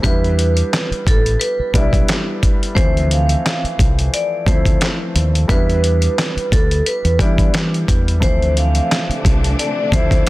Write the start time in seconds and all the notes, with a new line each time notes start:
0.02 E2 G3 B3 D4 E4 B4, kick, closed hi-hat
0.24 closed hi-hat
0.39 closed hi-hat
0.57 closed hi-hat
0.73 snare, clap, closed hi-hat
0.91 muted fingered electric bass stroke, closed hi-hat
1.07 A1 A4, kick, closed hi-hat
1.26 closed hi-hat
1.40 B4, closed hi-hat
1.59 muted fingered electric bass stroke
1.74 B1 G3 B3 D4 E4 D5, kick, closed hi-hat
1.93 kick, closed hi-hat
2.08 snare, clap, closed hi-hat
2.43 kick, closed hi-hat
2.63 closed hi-hat
2.75 D2 E3 F3 A3 C4 C5, kick, closed hi-hat
2.97 closed hi-hat
3.11 F5, closed hi-hat
3.29 closed hi-hat
3.46 snare, clap, closed hi-hat
3.64 muted fingered electric bass stroke, closed hi-hat
3.79 C2, kick, closed hi-hat
3.99 closed hi-hat
4.14 D5, closed hi-hat
4.46 D2 F3 A3 C4 E4 C5, kick, closed hi-hat
4.65 kick, closed hi-hat
4.81 snare, clap, closed hi-hat
5.15 D#2, closed hi-hat
5.35 closed hi-hat
5.48 E2 G3 B3 D4 E4 B4, kick, closed hi-hat
5.70 closed hi-hat
5.84 closed hi-hat
6.02 closed hi-hat
6.19 snare, clap, closed hi-hat
6.36 muted fingered electric bass stroke, closed hi-hat
6.52 D2 A4, kick, closed hi-hat
6.71 closed hi-hat
6.86 B4, closed hi-hat
7.04 E2, closed hi-hat
7.19 E3 G3 B3 D4 E4 D5, kick, closed hi-hat
7.38 kick, closed hi-hat
7.54 E3, snare, clap, closed hi-hat
7.74 closed hi-hat
7.88 E2, kick, closed hi-hat
8.08 closed hi-hat
8.20 D2 C3 D3 E3 F3 A3 C4 D4 C5, kick, closed hi-hat
8.42 closed hi-hat
8.57 F5, closed hi-hat
8.75 closed hi-hat
8.92 snare, clap, closed hi-hat
9.09 muted fingered electric bass stroke, closed hi-hat
9.25 C2, kick, closed hi-hat
9.44 closed hi-hat
9.59 D5, closed hi-hat
9.92 D2 F3 A3 C4 E4 C5, kick, closed hi-hat
10.11 kick, closed hi-hat